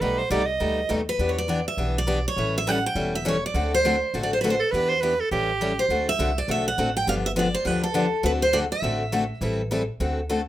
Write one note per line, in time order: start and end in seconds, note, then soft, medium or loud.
0.01 0.25 B1 medium
0.01 0.20 B2 medium
0.01 0.20 G3 medium
0.01 0.21 A3 medium
0.01 0.21 D#4 medium
0.01 0.21 G4 medium
0.01 0.20 B4 medium
0.19 0.31 C5 medium
0.30 0.55 C2 medium
0.30 0.41 B2 medium
0.30 0.41 G3 medium
0.30 0.41 A3 medium
0.30 0.42 D#4 medium
0.30 0.42 G4 medium
0.30 0.48 D5 medium
0.46 0.98 D#5 loud
0.60 0.85 D2 medium
0.60 0.79 B2 medium
0.60 0.79 G3 medium
0.60 0.79 A3 medium
0.60 0.79 D#4 medium
0.60 0.80 G4 medium
0.89 1.15 D#2 medium
0.89 1.00 B2 medium
0.89 1.00 G3 medium
0.89 1.00 A3 medium
0.89 1.00 D#4 medium
0.89 1.00 G4 medium
1.09 1.30 B4 medium
1.19 1.66 E2 medium
1.19 1.38 E3 medium
1.19 1.38 B3 medium
1.19 1.38 D4 medium
1.19 1.39 G4 medium
1.29 1.37 C#5 medium
1.38 1.67 D5 medium
1.48 1.59 E3 medium
1.48 1.59 B3 medium
1.48 1.59 D4 medium
1.48 1.59 G4 medium
1.68 1.94 E5 medium
1.77 2.25 B1 medium
1.77 1.97 E3 medium
1.77 1.97 B3 medium
1.77 1.97 D4 medium
1.77 1.98 G4 medium
1.98 2.27 D5 medium
2.07 2.18 E3 medium
2.07 2.18 B3 medium
2.07 2.18 D4 medium
2.07 2.18 G4 medium
2.28 2.57 C#5 medium
2.36 2.84 A1 medium
2.36 2.56 E3 medium
2.36 2.56 G3 medium
2.36 2.57 C#4 medium
2.36 2.57 E4 medium
2.36 2.57 A4 medium
2.58 2.69 E5 medium
2.67 2.77 E3 medium
2.67 2.77 G3 medium
2.67 2.77 C#4 medium
2.67 2.77 E4 medium
2.67 2.78 A4 medium
2.67 2.85 F#5 loud
2.86 3.15 G5 medium
2.95 3.43 E1 medium
2.95 3.15 E3 medium
2.95 3.15 G3 medium
2.95 3.15 C#4 medium
2.95 3.15 E4 medium
2.95 3.15 A4 medium
3.15 3.27 E5 medium
3.25 3.36 E3 medium
3.25 3.36 G3 medium
3.25 3.36 C#4 medium
3.25 3.36 E4 medium
3.25 3.36 A4 medium
3.25 3.44 C#5 medium
3.46 3.74 D5 medium
3.54 4.01 D2 medium
3.54 3.74 D3 medium
3.54 3.74 A3 medium
3.54 3.74 C4 medium
3.54 3.74 F#4 medium
3.54 3.74 A4 medium
3.74 4.20 C5 medium
3.85 3.95 D3 medium
3.85 3.95 A3 medium
3.85 3.95 C4 medium
3.85 3.95 F#4 medium
3.85 3.96 A4 medium
4.14 4.61 A1 medium
4.14 4.33 D3 medium
4.14 4.33 A3 medium
4.14 4.33 C4 medium
4.14 4.33 F#4 medium
4.14 4.33 A4 medium
4.23 4.33 D5 medium
4.33 4.40 C5 medium
4.41 4.54 D3 medium
4.41 4.54 A3 medium
4.41 4.54 C4 medium
4.41 4.54 F#4 medium
4.41 4.54 A4 medium
4.41 4.50 B4 medium
4.50 4.60 C5 medium
4.60 4.73 A4 medium
4.71 5.20 E2 medium
4.71 4.92 E3 medium
4.71 4.92 B3 medium
4.71 4.93 D4 medium
4.71 4.92 G4 medium
4.71 4.91 B4 medium
4.89 5.02 C5 medium
5.01 5.13 E3 medium
5.01 5.13 B3 medium
5.01 5.13 D4 medium
5.01 5.13 G4 medium
5.01 5.22 B4 medium
5.20 5.31 A4 medium
5.31 5.78 A1 medium
5.31 5.50 E3 medium
5.31 5.50 G3 medium
5.31 5.51 C#4 medium
5.31 5.50 E4 medium
5.31 5.86 G4 medium
5.31 5.51 A4 medium
5.61 5.71 E3 medium
5.61 5.71 G3 medium
5.61 5.72 C#4 medium
5.61 5.71 E4 medium
5.61 5.71 A4 medium
5.79 6.06 C5 medium
5.89 6.13 D2 medium
5.89 6.09 D3 soft
5.89 6.09 A3 medium
5.89 6.09 C4 medium
5.89 6.09 F#4 medium
5.89 6.09 A4 medium
6.09 6.38 E5 medium
6.19 6.44 C2 medium
6.19 6.30 D3 medium
6.19 6.30 A3 medium
6.19 6.30 C4 medium
6.19 6.30 F#4 medium
6.19 6.30 A4 medium
6.38 6.50 D5 medium
6.48 6.73 B1 medium
6.48 6.67 D3 medium
6.48 6.67 A3 medium
6.48 6.67 C4 medium
6.48 6.68 F#4 medium
6.48 6.68 A4 medium
6.48 6.67 E5 medium
6.68 6.94 F#5 medium
6.78 7.03 A1 medium
6.78 6.88 D3 medium
6.78 6.89 A3 medium
6.78 6.89 C4 medium
6.78 6.89 F#4 medium
6.78 6.89 A4 medium
6.97 7.08 G5 medium
7.07 7.54 G1 medium
7.07 7.26 D3 medium
7.07 7.26 F3 medium
7.07 7.26 B3 medium
7.07 7.26 D4 medium
7.07 7.26 G4 medium
7.07 7.14 F5 loud
7.26 7.31 E5 medium
7.36 7.47 D3 medium
7.36 7.47 F3 medium
7.36 7.47 B3 medium
7.36 7.47 D4 medium
7.36 7.47 G4 medium
7.36 7.55 D5 medium
7.54 7.67 C5 medium
7.65 8.13 D2 medium
7.65 7.84 D3 medium
7.65 7.84 F3 medium
7.65 7.84 B3 medium
7.65 7.84 D4 medium
7.65 7.85 G4 medium
7.65 7.83 B4 medium
7.84 8.25 A4 medium
7.94 8.05 D3 medium
7.94 8.05 F3 medium
7.94 8.05 B3 medium
7.94 8.05 D4 medium
7.94 8.05 G4 medium
8.23 8.71 D2 medium
8.23 8.43 D3 medium
8.23 8.43 A3 medium
8.23 8.43 C4 medium
8.23 8.43 F#4 medium
8.23 8.43 A4 medium
8.23 8.31 B4 medium
8.42 8.55 C5 medium
8.53 8.64 D3 medium
8.53 8.64 A3 medium
8.53 8.64 C4 medium
8.53 8.64 F#4 medium
8.53 8.64 A4 medium
8.53 8.58 D5 medium
8.72 9.55 E5 medium
8.82 9.30 A1 medium
8.82 9.02 D3 medium
8.82 9.02 A3 medium
8.82 9.02 C4 medium
8.82 9.02 F#4 medium
8.82 9.02 A4 medium
9.12 9.23 D3 medium
9.12 9.23 A3 medium
9.12 9.23 C4 medium
9.12 9.23 F#4 medium
9.12 9.23 A4 medium
9.41 9.88 A1 medium
9.41 9.60 E3 medium
9.41 9.61 G3 medium
9.41 9.61 C4 medium
9.41 9.61 E4 medium
9.41 9.61 A4 medium
9.71 9.81 E3 medium
9.71 9.81 G3 medium
9.71 9.82 C4 medium
9.71 9.82 E4 medium
9.71 9.82 A4 medium
10.00 10.47 D2 medium
10.00 10.19 D3 medium
10.00 10.19 A3 medium
10.00 10.19 C4 medium
10.00 10.19 F#4 medium
10.00 10.19 A4 medium
10.29 10.40 D3 medium
10.29 10.40 A3 medium
10.29 10.40 C4 medium
10.29 10.40 F#4 medium
10.29 10.40 A4 medium